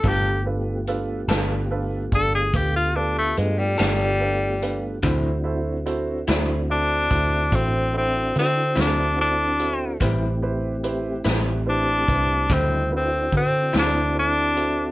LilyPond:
<<
  \new Staff \with { instrumentName = "Upright piano" } { \time 12/8 \key d \mixolydian \tempo 4. = 48 <d' f' a' b'>8 <d' f' a' b'>8 <d' f' a' b'>8 <d' f' a' b'>8 <d' f' a' b'>8 <d' f' a' d''>8 <d' f' a' b'>8 <d' f' a' b'>8 <d' f' a' b'>8 <d' f' a' b'>8 <d' f' a' b'>8 <d' f' a' b'>8 | <e' fis' a' c''>8 <e' fis' a' c''>8 <e' fis' a' c''>8 <e' fis' a' c''>8 <e' fis' a' c''>8 <e' fis' a' c''>8 <e' fis' a' c''>8 <e' fis' a' c''>8 <e' fis' a' c''>8 <e' fis' a' c''>8 <e' fis' a' c''>8 <e' fis' a' c''>8 | <e' g' b' c''>8 <e' g' b' c''>8 <e' g' b' c''>8 <e' g' b' c''>8 <e' g' b' c''>8 <e' g' b' c''>8 <e' fis' a' c''>8 <e' fis' a' b'>8 <e' fis' a' c''>8 <e' fis' a' c''>8 <e' fis' a' c''>8 <e' fis' a' c''>8 | }
  \new Staff \with { instrumentName = "Tonewheel organ" } { \time 12/8 \key d \mixolydian <a b f' g'>1. | <c' d' e' fis'>1. | <a c' e' g'>2. <cis g e' ees''>8 <c' d' e' fis'>2~ <c' d' e' fis'>8 | }
  \new Staff \with { instrumentName = "Tenor saxophone" } { \time 12/8 \key d \mixolydian g'8 r2 a'16 gis'16 g'16 f'16 d'16 a16 gis16 g16 g4. | r2 d'4 c'8 c'8 c'8 d'8 d'4 | r2 d'4 c'8 c'8 c'8 d'8 d'4 | }
  \new Staff \with { instrumentName = "Clean electric guitar" } { \time 12/8 \key d \mixolydian <g b f' a'>8 r4 <g b f' a'>8 r2 r8 <g b f' a'>8 r4 | <d fis c' e'>8 r4 <d fis c' e'>8 r2 r8 <d fis c' e'>8 r4 | <a, g c' e'>8 r4 <a, g c' e'>8 r4 <d fis c' e'>8 r4 <d fis c' e'>8 r4 | }
  \new Staff \with { instrumentName = "Fingered electric bass" } { \clef bass \time 12/8 \key d \mixolydian g,,4. g,,4 g,,8 d,4 g,8 g,,4. | d,4. d,4 d,8 a,,4 d8 d,4. | a,,4. a,,4 c,8 d,4 d8 d,4. | }
  \new DrumStaff \with { instrumentName = "Drums" } \drummode { \time 12/8 <hh bd>4 hh8 <hh sn>4 <hh bd>8 <hh bd>4 hh8 <hh sn>4 hh8 | <hh bd>4 hh8 <hh sn>4 <hh bd>8 <hh bd>4 <hh sn>8 <hh sn>4 hh8 | <hh bd>4 hh8 <hh sn>4 <hh bd>8 <hh bd>4 <hh bd>8 <hh sn>4 hh8 | }
>>